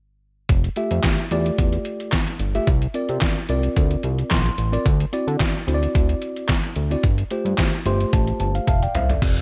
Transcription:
0.49 analog synth bass F1, kick, closed hi-hat
0.64 closed hi-hat
0.76 tine electric piano A3 F4 G4 E5, closed hi-hat
0.91 analog synth bass F2, closed hi-hat
1.03 kick, snare, clap, closed hi-hat
1.18 closed hi-hat
1.31 analog synth bass E2, tine electric piano A3 F4 G4 D5, closed hi-hat
1.46 closed hi-hat
1.58 analog synth bass E2, kick, closed hi-hat
1.73 closed hi-hat
1.85 closed hi-hat
2.00 closed hi-hat
2.12 kick, snare, clap, closed hi-hat
2.27 closed hi-hat
2.39 analog synth bass G1, closed hi-hat
2.55 tine electric piano A3 F4 G4 E5, closed hi-hat
2.67 analog synth bass C2, kick, closed hi-hat
2.82 closed hi-hat
2.94 tine electric piano C4 F4 A#4 D5, closed hi-hat
3.09 analog synth bass C3, closed hi-hat
3.21 kick, snare, clap, closed hi-hat
3.36 closed hi-hat
3.49 analog synth bass C2, tine electric piano C4 F4 A#4 D5, closed hi-hat
3.63 closed hi-hat
3.76 analog synth bass D2, kick, closed hi-hat
3.91 closed hi-hat
4.03 analog synth bass C2, closed hi-hat
4.19 closed hi-hat
4.31 analog synth bass A#1, tine electric piano C6, kick, snare, clap, closed hi-hat
4.46 closed hi-hat
4.58 analog synth bass A1, closed hi-hat
4.72 tine electric piano C4 F4 A#4 D5, closed hi-hat
4.86 analog synth bass D2, kick, closed hi-hat
5.00 closed hi-hat
5.13 tine electric piano C4 E4 F#4 D5, closed hi-hat
5.28 analog synth bass D3, closed hi-hat
5.40 kick, snare, clap, closed hi-hat
5.55 closed hi-hat
5.67 analog synth bass D2, tine electric piano C4 E4 F#4 C5, closed hi-hat
5.74 tine electric piano D5
5.83 closed hi-hat
5.95 analog synth bass D2, kick, closed hi-hat
6.09 closed hi-hat
6.22 closed hi-hat
6.36 closed hi-hat
6.49 kick, snare, clap, closed hi-hat
6.63 closed hi-hat
6.76 analog synth bass D2, closed hi-hat
6.91 tine electric piano C4 E4 F#4 D5, closed hi-hat
7.03 analog synth bass G1, kick, closed hi-hat
7.18 closed hi-hat
7.31 tine electric piano A3 F4 G4 C5, closed hi-hat
7.45 analog synth bass G2, closed hi-hat
7.58 kick, snare, clap, closed hi-hat
7.73 closed hi-hat
7.86 analog synth bass G1, tine electric piano A3 F4 G4 C5 C6, closed hi-hat
8.00 closed hi-hat
8.13 analog synth bass A1, tine electric piano A5, kick, closed hi-hat
8.27 closed hi-hat
8.40 analog synth bass G1, tine electric piano A5, closed hi-hat
8.55 tine electric piano F5, closed hi-hat
8.67 analog synth bass F1, tine electric piano E5 F5 A5, kick, closed hi-hat, high tom
8.83 tine electric piano D5 G5, closed hi-hat
8.95 analog synth bass C2, tine electric piano C5 E5 F5, closed hi-hat, mid tom
9.10 tine electric piano A4 D5, closed hi-hat, floor tom
9.22 analog synth bass F1, kick, closed hi-hat, crash
9.37 closed hi-hat

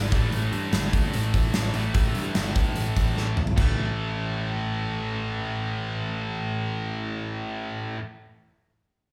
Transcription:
Already playing: picked electric bass G#1, distorted electric guitar D3 A3 D4
0.12 picked electric bass A1, distorted electric guitar A2 E3, kick, open hi-hat
0.16 distorted electric guitar A3
0.32 picked electric bass A1, open hi-hat
0.52 picked electric bass G2, open hi-hat
0.72 picked electric bass G1, snare, open hi-hat
0.93 kick, open hi-hat
1.14 picked electric bass A1, open hi-hat
1.34 picked electric bass A1, kick, open hi-hat
1.54 picked electric bass A1, snare, open hi-hat
1.74 picked electric bass A1, distorted electric guitar A2 E3, open hi-hat
1.78 distorted electric guitar A3
1.94 picked electric bass A1, kick, open hi-hat
2.15 picked electric bass G2, open hi-hat
2.35 picked electric bass G1, snare, open hi-hat
2.56 kick, open hi-hat
2.75 picked electric bass A1, open hi-hat
2.96 picked electric bass A1, kick, open hi-hat
3.17 picked electric bass A1, snare
3.37 picked electric bass A1, mid tom
3.47 floor tom
3.57 picked electric bass A1, distorted electric guitar A2 E3 A3, kick, floor tom, splash

